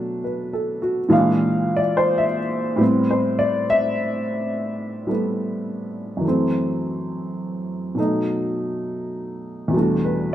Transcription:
Already playing: B2 F#3 A3 D4 B4
0.24 B4
0.53 A4
0.82 F#4
1.09 A#2 E3 G#3 D4 F5
1.76 D5
1.97 C5
2.18 E5
2.76 A2 G3 B3
2.81 C4
3.11 C5
3.39 D5
3.70 E5
5.07 G3 A3 B3
6.17 F#2 E3
6.25 A3 C4
7.95 B2 F#3 A3
7.99 D#4
9.68 E2 B2
9.73 G3 A3 D4
9.80 F#4
10.04 B4

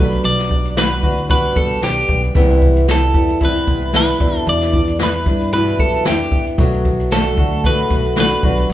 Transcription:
Already playing: B1 F#3 B3 D4 F#4 B4
0.00 B2 G3
0.12 shaker
0.23 B1 F#3 D5, tambourine, shaker
0.39 snare, shaker
0.49 D4, kick, tambourine
0.65 tambourine, shaker
0.76 G3 B3 D4 F#4 B4, snare, tambourine, shaker
0.91 shaker
1.03 D2 B3 D4 E4 F#4, kick, tambourine
1.18 shaker
1.29 B2 G3 B3 D4 F#4 B4, kick, tambourine, shaker
1.45 tambourine, shaker
1.55 C2 B3 A4, kick, tambourine, shaker
1.70 tambourine, shaker
1.81 B1 G3 B3 D4 G4, snare, tambourine, shaker
1.97 tambourine, shaker
2.08 B1 B3, kick, shaker
2.23 shaker
2.34 C2 C3 E3 G3 B3 E4, kick, tambourine, shaker
2.50 shaker
2.60 E4, kick, tambourine
2.76 tambourine, shaker
2.87 E3 G3 B3 E4, snare, tambourine, shaker
2.91 A4
3.02 shaker
3.13 E2 G3 B3 E4 G4, kick, tambourine
3.29 tambourine, shaker
3.40 C3 E3 G3 B3 E4, kick, tambourine, shaker
3.45 B4
3.56 tambourine, shaker
3.67 C2 B3, kick, tambourine
3.81 shaker
3.93 E3 G3 B3 E4 B4, snare, tambourine, shaker
4.09 tambourine, shaker
4.19 E2 B2 E3 G3 B3 D4 E4, kick
4.35 A4, shaker
4.47 E2 B3 D5, tambourine, shaker
4.61 snare, shaker
4.73 E3 G3 D4 E4, kick, tambourine
4.88 tambourine, shaker
4.99 E3 G3 B3 D4 E4, snare, tambourine, shaker
5.03 B4
5.14 shaker
5.26 G2 E3 G3 D4 E4 G4, kick, tambourine, shaker
5.41 tambourine, shaker
5.52 E2 B2 E3 G3 D4 E4 B4, tambourine, shaker
5.68 shaker
5.78 F#2 B3 A4, kick, tambourine
5.93 tambourine, shaker
6.05 E2 E3 G3 D4 E4 G4, snare, tambourine, shaker
6.19 tambourine, shaker
6.31 E2 B3, kick
6.47 shaker
6.58 B1 B2 F#3 A3 D4 F#4, kick, tambourine, shaker
6.73 shaker
6.85 D4, kick, tambourine, shaker
7.00 shaker
7.10 F#3 A3 A4, snare, tambourine, shaker
7.14 A3 D4 F#4
7.26 shaker
7.37 D2 A3 D4 F#4, kick, tambourine, shaker
7.53 shaker
7.63 B2 F#3 A3 D4 F#4 B4, kick, tambourine, shaker
7.79 shaker
7.89 B1 A3, kick, tambourine, shaker
8.04 tambourine, shaker
8.16 F#3 A3 D4, snare, tambourine, shaker
8.20 D4 F#4 B4
8.31 tambourine, shaker
8.43 B1 B2 F#3 G3 B3 D4 F#4, kick
8.57 shaker
8.69 B1 F#3, tambourine, shaker

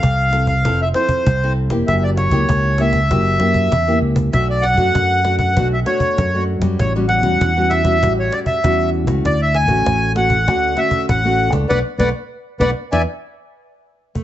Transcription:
Already playing: C4 A4 F5
0.03 C2 C3, cajon bass, cajon slap
0.33 C4 E4 A4, cajon slap
0.47 F5, cajon bass
0.64 F1 F3 C4 E4 A4, cajon bass, cajon slap
0.82 E5
0.94 C4 E4 A4 C5, cajon slap
1.09 cajon bass
1.26 C2 C3, cajon bass, cajon slap
1.43 C4 E4 A4
1.56 cajon slap
1.67 E1 A#3 E4 G4, cajon bass, cajon slap
1.87 F#1 F#3 E5, cajon bass, cajon slap
2.03 D5
2.17 C#5, cajon slap
2.29 C#2 A#3 E4 G4, cajon bass
2.49 C#2 C#3, cajon bass, cajon slap
2.78 A#3 E4 G4 E5, cajon slap
2.93 cajon bass
3.10 F#1 F#3 A#3 E4 G4, cajon bass, cajon slap
3.27 cajon slap
3.40 F#2 A#3 E4 G4, cajon slap
3.54 cajon bass
3.72 E2 C#3, cajon bass, cajon slap
3.88 A#3 E4 G4, cajon slap
4.01 C#2, cajon slap
4.16 cajon bass, cajon slap
4.32 B1 B2 A3 D4 F#4 E5, cajon bass, cajon slap
4.50 D5
4.62 F#5, cajon slap
4.74 F#2 A3 D4 F#4, cajon bass
4.94 F#2, cajon bass, cajon slap
5.24 A3 D4 F#4, cajon slap
5.38 F#5, cajon bass
5.56 B1 B2 A3 D4 F#4, cajon bass, cajon slap
5.73 E5, cajon slap
5.86 A3 D4 F#4 C#5, cajon slap
6.00 cajon bass
6.18 F#2, cajon bass, cajon slap
6.34 A3 D4 F#4
6.48 cajon slap
6.59 F#2 G3 C#4 F#4, cajon bass, cajon slap
6.79 A1 A2 C#5, cajon bass, cajon slap
6.96 G3 C#4 F#4
7.08 G3 C#4 F#4 F#5, cajon slap
7.20 E2 G3 C#4 F#4, cajon bass
7.41 E2 E3, cajon bass, cajon slap
7.56 G3 C#4 F#4
7.70 E5, cajon slap
7.84 G3 C#4 F#4, cajon bass
8.02 A1 A2 G3 C#4 F#4, cajon bass, cajon slap
8.19 C#5
8.32 D5, cajon slap
8.46 E5, cajon bass
8.63 E2 E3 G3 C#4 F#4, cajon bass, cajon slap
8.93 cajon slap
9.04 C#2 A3 C#4 F#4, cajon bass, cajon slap
9.25 D2 D3 D5, cajon bass, cajon slap
9.42 E5
9.54 G#5, cajon slap
9.65 A1 A3 C#4 F#4, cajon bass
9.86 A1 A2, cajon bass, cajon slap
10.15 A3 C#4 F#4 F#5, cajon slap
10.30 cajon bass
10.47 D2 D3 A3 C#4 F#4, cajon bass, cajon slap
10.76 A3 C#4 F#4 E5, cajon slap
10.91 cajon bass
11.08 A1 A2 F#5, cajon bass, cajon slap
11.25 A3 C#4 F#4
11.50 C#2 D4 A4 C#5, cajon bass, cajon slap
11.69 B1 A3 B3 D4 B4 D5 F#5, cajon bass, cajon slap
11.98 B1 A3 B3 D4 B4 D5 F#5, cajon bass, cajon slap
12.60 B1 A3 B3 D4 B4 D5 F#5, cajon bass, cajon slap
12.92 E2 B3 D4 E4 D5 E5 G#5, cajon bass, cajon slap
14.15 A3, cajon bass

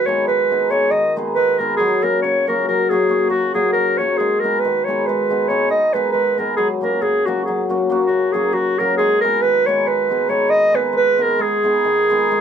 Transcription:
Already playing: D#3
0.06 G#3 B3 D#4 G#4 C#5
0.28 G#3 B4
0.51 G#3 B3 D#4 G#4
0.70 G#3 B3 D#4 G#4 C#5
0.91 D#3 D#5
1.16 G#3 B3 D#4 G#4
1.34 G#3 B4
1.58 G#3 B3 D#4 G#4 A#4
1.77 F#3 G#4
2.02 F#3 A#3 C#4 F#4 A#4
2.22 C#3 C#5
2.47 F#3 A#3 C#4 F#4 A#4
2.68 F#3 A#4
2.90 F#3 A#3 C#4 F#4 G#4
3.09 F#3 A#3 C#4 F#4
3.29 C#3 F#4
3.54 F#3 A#3 C#4 F#4 G#4
3.73 F#3 A#4
3.98 F#3 A#3 C#4 F#4 C#5
4.18 G#3 G#4
4.40 G#3 A#4
4.44 B3 D#4 G#4
4.60 B4
4.65 D#3
4.85 G#3 B3 D#4 C#5
4.90 G#4
5.07 G#3 B4
5.30 G#3 B3 D#4 G#4
5.48 G#3 B3 D#4 G#4 C#5
5.69 D#3 D#5
5.93 G#3 B3 D#4 G#4 B4
6.12 G#3 B4
6.38 G#3 B3 D#4 G#4 A#4
6.57 F#3 G#4
6.81 F#3 A#3 C#4 F#4 A#4
7.02 C#3 G#4
7.25 F#3 A#3 C#4 F#4
7.45 F#3 G#4
7.69 F#3 A#3 C#4 F#4
7.90 F#3 A#3 C#4 F#4
8.07 C#3 F#4
8.32 F#3 A#3 C#4 F#4 G#4
8.53 F#3 F#4
8.79 F#3 A#3 C#4 F#4 A#4
8.97 G#3 G#4
9.21 G#3 B3 A#4
9.25 D#4 G#4
9.41 D#3 B4
9.66 G#3 B3 D#4 G#4 C#5
9.87 G#3 B4
10.09 G#3 B3 D#4 G#4
10.28 G#3 B3 D#4 G#4 C#5
10.48 D#3 D#5
10.72 G#3 B3 D#4 G#4 B4
10.93 G#3 B4
11.18 G#3 B3 D#4 G#4
11.22 A#4
11.39 G#3 G#4
11.64 G#3 B3 D#4 G#4
11.85 D#3
12.10 G#3 B3 D#4 G#4
12.31 G#3

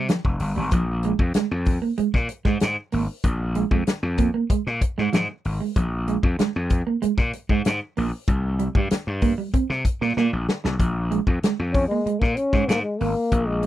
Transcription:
0.09 F3, snare, closed hi-hat
0.25 F1, muted clean electric guitar stroke, kick
0.40 G1, open hi-hat
0.56 G#1 G3
0.71 A#1 F3, kick, closed hi-hat
1.03 G#3, closed hi-hat
1.19 F2, muted clean electric guitar stroke, kick
1.34 G#3, muted slap bass stroke, snare, closed hi-hat
1.51 F2
1.65 muted clean electric guitar stroke, kick, open hi-hat
1.82 A#3
1.98 G#3, muted slap bass stroke, closed hi-hat
2.14 A#2, kick, snare
2.29 muted clean electric guitar stroke, closed hi-hat
2.45 G#2 G#3, kick, snare
2.60 G#2, snare, closed hi-hat
2.92 G#1 A#3, open hi-hat
3.24 A#1, kick, closed hi-hat
3.40 muted clean electric guitar stroke
3.55 G#3, closed hi-hat
3.71 F2 G#3, kick
3.87 muted slap bass stroke, muted clean electric guitar stroke, snare, closed hi-hat
4.03 F2
4.18 A#3, kick, closed hi-hat
4.34 A#3
4.50 G#3, muted slap bass stroke, kick, closed hi-hat
4.66 A#2, muted clean electric guitar stroke, snare
4.81 kick, closed hi-hat
4.98 G#2 G#3, snare
5.13 G#2 F3, snare, closed hi-hat
5.29 muted clean electric guitar stroke
5.45 G#1, open hi-hat
5.60 G#3
5.76 A#1 F3, kick, closed hi-hat
6.08 G#3, closed hi-hat
6.23 F2, muted clean electric guitar stroke, kick
6.39 G#3, muted slap bass stroke, snare, closed hi-hat
6.56 F2
6.70 muted clean electric guitar stroke, kick, closed hi-hat
6.87 A#3
7.02 G#3, muted slap bass stroke, closed hi-hat
7.18 A#2, kick, snare
7.33 muted clean electric guitar stroke, closed hi-hat
7.49 G#2 G#3, kick
7.65 G#2, snare, closed hi-hat
7.97 A#1 A#3, open hi-hat
8.28 C2, kick, closed hi-hat
8.44 muted clean electric guitar stroke
8.59 G3, closed hi-hat
8.75 G2 G3, kick
8.91 muted clean electric guitar stroke, muted slap bass stroke, snare, closed hi-hat
9.07 G2
9.21 A#3, kick, open hi-hat
9.38 G3
9.54 C4, muted slap bass stroke, kick, closed hi-hat
9.70 C3, muted clean electric guitar stroke, snare
9.85 kick, closed hi-hat
10.01 A#2 A#3, snare
10.17 A#2 A#3, snare
10.32 A#1, muted clean electric guitar stroke
10.49 snare
10.64 C2 G3, snare
10.79 A#1 F3, kick, closed hi-hat
11.11 G#3, closed hi-hat
11.27 F2, muted clean electric guitar stroke, kick
11.43 G#3, muted slap bass stroke, snare, closed hi-hat
11.59 F2
11.73 C#4, muted clean electric guitar stroke, kick, open hi-hat
11.88 G#3 A#3
12.06 G#3, muted slap bass stroke, closed hi-hat
12.19 A#2 A#3, kick, snare
12.36 C#4, muted clean electric guitar stroke, closed hi-hat
12.53 G#2 G#3, kick, snare
12.68 G#2 A#3, snare, closed hi-hat
12.83 G#3
13.00 G#1 A#3, open hi-hat
13.32 A#1, kick, closed hi-hat
13.47 G#3, muted clean electric guitar stroke
13.63 G#3, closed hi-hat

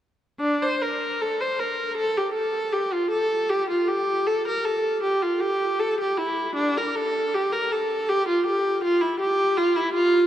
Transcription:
0.40 D4
0.62 C5
0.82 A#4
1.21 A4
1.41 C5
1.59 A#4
1.97 A4
2.18 G4
2.34 A4
2.72 G4
2.93 F4
3.11 A4
3.50 G4
3.70 F4
3.88 G4
4.27 A4
4.48 A#4
4.65 A4
5.03 G4
5.22 F4
5.40 G4
5.79 A4
6.01 G4
6.17 E4
6.55 D4
6.77 A#4
6.95 A4
7.34 G4
7.52 A#4
7.71 A4
8.09 G4
8.28 F4
8.46 G4
8.84 F4
9.01 E4
9.19 G4
9.57 F4
9.76 E4
9.93 F4

